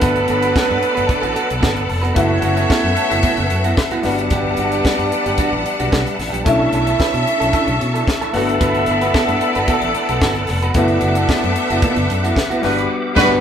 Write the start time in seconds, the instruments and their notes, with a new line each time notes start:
Already playing: horn section F#3 B3 D4 B4, grand piano A3 B3 D4 F#4, string section B3 A4 D5, tonewheel organ A4 F#5 A5 B5
0.02 fingered electric bass G1, clean electric guitar B3 F#4 B4, kick, closed hi-hat
0.16 closed hi-hat
0.28 fingered electric bass G1, clean electric guitar B3 F#4 A4, closed hi-hat
0.42 clean electric guitar B3 F#4 B4, closed hi-hat
0.55 clean electric guitar B3 F#4 A4, muted fingered electric bass stroke, kick, snare
0.68 fingered electric bass G2, muted clean electric guitar stroke
0.81 muted clean electric guitar stroke, closed hi-hat
0.95 fingered electric bass G1, clean electric guitar B3 F#4 B4, closed hi-hat
1.07 muted clean electric guitar stroke, kick, closed hi-hat
1.21 fingered electric bass A1, clean electric guitar B3 F#4 A4, closed hi-hat
1.34 clean electric guitar B3 F#4 A4, closed hi-hat
1.49 fingered electric bass B1, muted clean electric guitar stroke, closed hi-hat
1.61 fingered electric bass G1, clean electric guitar B3 F#4 A4, kick, snare
1.75 muted clean electric guitar stroke, closed hi-hat
1.87 fingered electric bass F1, muted clean electric guitar stroke, open hi-hat
2.02 clean electric guitar B3 F#4 B4, closed hi-hat
2.14 fingered electric bass F#1, grand piano A3 B3 E4 F#4, horn section A3 C#4 F#4 C#5, clean electric guitar B3 E4 F#4, string section B3 A4 E5, tonewheel organ B4 E5 A5, kick, closed hi-hat
2.42 fingered electric bass F#1, clean electric guitar B3 E4 F#4, closed hi-hat
2.56 clean electric guitar B3 E4 F#4, closed hi-hat
2.69 clean electric guitar B3 E4 A4, kick, snare
2.84 fingered electric bass F#2, muted clean electric guitar stroke
2.97 muted clean electric guitar stroke, closed hi-hat
3.10 fingered electric bass F#1, clean electric guitar B3 E4 F#4, closed hi-hat
3.23 clean electric guitar B3 E4 F#4, kick, closed hi-hat
3.37 fingered electric bass F#1, muted clean electric guitar stroke, closed hi-hat
3.50 fingered electric bass F#2, muted clean electric guitar stroke, closed hi-hat
3.64 clean electric guitar B3 E4 F#4, closed hi-hat
3.77 kick, snare
3.91 clean electric guitar B3 E4 F#4, closed hi-hat
4.02 fingered electric bass G1, grand piano G3 B3 D4 F#4, clean electric guitar G3 D4 F#4, tonewheel organ G3, horn section B3 D4 G4 D5, string section D4 B4 F#5, snare, open hi-hat
4.18 muted clean electric guitar stroke, closed hi-hat
4.30 fingered electric bass G1, clean electric guitar G3 D4 G4, kick, closed hi-hat
4.57 fingered electric bass G1, clean electric guitar G3 D4 F#4, closed hi-hat
4.72 clean electric guitar G3 D4 G4, closed hi-hat
4.85 clean electric guitar G3 D4 F#4, kick, snare
4.99 fingered electric bass G2, muted clean electric guitar stroke, closed hi-hat
5.12 muted clean electric guitar stroke, closed hi-hat
5.26 fingered electric bass G1, clean electric guitar G3 D4 G4, closed hi-hat
5.38 clean electric guitar G3 D4 F#4, kick, closed hi-hat
5.52 fingered electric bass A1, muted clean electric guitar stroke
5.65 muted clean electric guitar stroke, closed hi-hat
5.80 fingered electric bass B1, clean electric guitar G3 D4 F#4, closed hi-hat
5.91 fingered electric bass B1, clean electric guitar G3 D4 F#4, kick, snare
6.06 muted clean electric guitar stroke, closed hi-hat
6.19 fingered electric bass A1, muted clean electric guitar stroke, snare, open hi-hat
6.32 fingered electric bass A#1, clean electric guitar G3 D4 G4, closed hi-hat
6.44 fingered electric bass B1, grand piano A3 C#4 D4 E4, horn section C#4 E4 A4 E5, string section C#4 A4 E5, clean electric guitar D4 E4 A4, tonewheel organ A4 E5 C#6, kick, closed hi-hat
6.72 fingered electric bass B1, clean electric guitar D4 E4 A4, closed hi-hat
6.86 clean electric guitar D4 E4 A4, closed hi-hat
7.00 clean electric guitar D4 E4 B4, kick, snare
7.14 fingered electric bass B2, muted clean electric guitar stroke, closed hi-hat
7.26 muted clean electric guitar stroke, closed hi-hat
7.40 fingered electric bass B1, clean electric guitar D4 E4 A4, closed hi-hat
7.52 clean electric guitar D4 E4 A4, kick, closed hi-hat
7.67 fingered electric bass B1, muted clean electric guitar stroke, closed hi-hat
7.80 fingered electric bass B2, muted clean electric guitar stroke, closed hi-hat
7.94 clean electric guitar D4 E4 A4, closed hi-hat
8.07 muted clean electric guitar stroke, kick, snare
8.21 clean electric guitar D4 E4 A4, closed hi-hat
8.32 fingered electric bass G1, grand piano A3 B3 D4 F#4, clean electric guitar B3 F#4 A4, horn section B3 E4 A4 E5, string section B3 A4 D5, tonewheel organ F#5 A5 B5, snare, open hi-hat
8.48 muted clean electric guitar stroke, closed hi-hat
8.61 fingered electric bass G1, clean electric guitar B3 F#4 B4, kick, closed hi-hat
8.75 closed hi-hat
8.86 fingered electric bass G1, clean electric guitar B3 F#4 A4, closed hi-hat
9.01 clean electric guitar B3 F#4 B4, closed hi-hat
9.14 clean electric guitar B3 F#4 A4, kick, snare
9.28 fingered electric bass G2, muted clean electric guitar stroke, closed hi-hat
9.41 muted clean electric guitar stroke, closed hi-hat
9.55 fingered electric bass G1, clean electric guitar B3 F#4 B4, closed hi-hat
9.68 clean electric guitar B3 F#4 A4, kick, closed hi-hat
9.82 fingered electric bass A1, muted clean electric guitar stroke, closed hi-hat
9.95 muted clean electric guitar stroke, closed hi-hat
10.09 fingered electric bass B1, clean electric guitar B3 F#4 A4, closed hi-hat
10.22 fingered electric bass G1, clean electric guitar B3 F#4 A4, kick, snare
10.35 muted clean electric guitar stroke, closed hi-hat
10.47 fingered electric bass F1, muted clean electric guitar stroke, snare, open hi-hat
10.62 clean electric guitar B3 F#4 B4, closed hi-hat
10.74 fingered electric bass F#1, grand piano A3 B3 E4 F#4, clean electric guitar B3 E4 F#4, horn section B3 D4 A4 D5, string section B3 A4 E5, tonewheel organ B4 E5 D6, kick, closed hi-hat
10.88 closed hi-hat
11.01 fingered electric bass F#1, clean electric guitar B3 E4 F#4, closed hi-hat
11.15 clean electric guitar B3 E4 F#4, closed hi-hat
11.29 clean electric guitar B3 E4 A4, kick, snare
11.43 fingered electric bass F#2, muted clean electric guitar stroke, closed hi-hat
11.56 muted clean electric guitar stroke, closed hi-hat
11.70 fingered electric bass F#1, clean electric guitar B3 E4 F#4, closed hi-hat
11.82 clean electric guitar B3 E4 F#4, kick, closed hi-hat
11.96 fingered electric bass F#1, muted clean electric guitar stroke, closed hi-hat
12.10 fingered electric bass F#2, muted clean electric guitar stroke, closed hi-hat
12.24 clean electric guitar B3 E4 F#4, closed hi-hat
12.36 muted clean electric guitar stroke, kick, snare
12.50 clean electric guitar B3 E4 F#4, closed hi-hat
12.62 fingered electric bass G1, grand piano G3 B3 D4 F#4, horn section G3 B3 F#4 B4, clean electric guitar G3 D4 F#4, string section G3 F#4 B4, tonewheel organ G4 D6, snare, open hi-hat
12.78 muted clean electric guitar stroke, closed hi-hat
13.15 fingered electric bass G1, grand piano G3 B3 D4 F#4, string section G3 F#4 B4, horn section G3 B3 F#4 B4, clean electric guitar G3 D4 F#4, kick, snare, crash